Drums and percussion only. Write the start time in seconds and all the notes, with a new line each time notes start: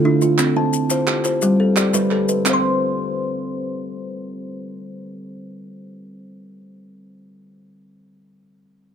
0.21 maracas
0.38 clap, maracas
0.73 maracas
0.90 clap, maracas
1.07 clap
1.24 clap, maracas
1.42 maracas
1.76 clap, maracas
1.94 clap, maracas
2.11 clap
2.29 maracas
2.46 clap, maracas